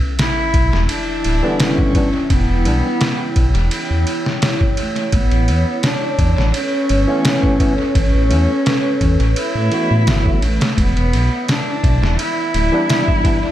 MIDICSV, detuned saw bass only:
0, 0, Header, 1, 2, 480
1, 0, Start_track
1, 0, Tempo, 705882
1, 1567, Time_signature, 4, 2, 24, 8
1, 9190, End_track
2, 0, Start_track
2, 0, Title_t, "Detuned saw bass"
2, 0, Program_c, 0, 39
2, 368, Note_on_c, 0, 35, 86
2, 481, Note_off_c, 0, 35, 0
2, 502, Note_on_c, 0, 28, 93
2, 597, Note_off_c, 0, 28, 0
2, 853, Note_on_c, 0, 26, 87
2, 963, Note_off_c, 0, 26, 0
2, 1566, Note_on_c, 0, 28, 102
2, 1680, Note_off_c, 0, 28, 0
2, 1700, Note_on_c, 0, 28, 89
2, 1809, Note_on_c, 0, 35, 82
2, 1819, Note_off_c, 0, 28, 0
2, 1921, Note_off_c, 0, 35, 0
2, 2288, Note_on_c, 0, 35, 85
2, 2401, Note_off_c, 0, 35, 0
2, 2417, Note_on_c, 0, 28, 97
2, 2515, Note_off_c, 0, 28, 0
2, 2657, Note_on_c, 0, 40, 96
2, 2755, Note_off_c, 0, 40, 0
2, 3487, Note_on_c, 0, 33, 95
2, 3600, Note_off_c, 0, 33, 0
2, 3619, Note_on_c, 0, 33, 95
2, 3730, Note_on_c, 0, 40, 82
2, 3740, Note_off_c, 0, 33, 0
2, 3842, Note_off_c, 0, 40, 0
2, 4207, Note_on_c, 0, 40, 84
2, 4320, Note_off_c, 0, 40, 0
2, 4340, Note_on_c, 0, 33, 94
2, 4436, Note_off_c, 0, 33, 0
2, 4693, Note_on_c, 0, 31, 85
2, 4803, Note_off_c, 0, 31, 0
2, 5409, Note_on_c, 0, 33, 98
2, 5521, Note_off_c, 0, 33, 0
2, 5540, Note_on_c, 0, 33, 96
2, 5652, Note_on_c, 0, 40, 84
2, 5662, Note_off_c, 0, 33, 0
2, 5763, Note_off_c, 0, 40, 0
2, 6129, Note_on_c, 0, 40, 90
2, 6241, Note_off_c, 0, 40, 0
2, 6257, Note_on_c, 0, 33, 98
2, 6355, Note_off_c, 0, 33, 0
2, 6496, Note_on_c, 0, 45, 90
2, 6595, Note_off_c, 0, 45, 0
2, 6739, Note_on_c, 0, 45, 72
2, 6849, Note_on_c, 0, 31, 93
2, 6859, Note_off_c, 0, 45, 0
2, 7061, Note_off_c, 0, 31, 0
2, 7089, Note_on_c, 0, 33, 95
2, 7201, Note_off_c, 0, 33, 0
2, 7330, Note_on_c, 0, 28, 102
2, 7442, Note_off_c, 0, 28, 0
2, 7459, Note_on_c, 0, 28, 94
2, 7571, Note_on_c, 0, 35, 80
2, 7581, Note_off_c, 0, 28, 0
2, 7682, Note_off_c, 0, 35, 0
2, 8052, Note_on_c, 0, 35, 88
2, 8163, Note_off_c, 0, 35, 0
2, 8181, Note_on_c, 0, 28, 96
2, 8277, Note_off_c, 0, 28, 0
2, 8532, Note_on_c, 0, 26, 82
2, 8642, Note_off_c, 0, 26, 0
2, 9190, End_track
0, 0, End_of_file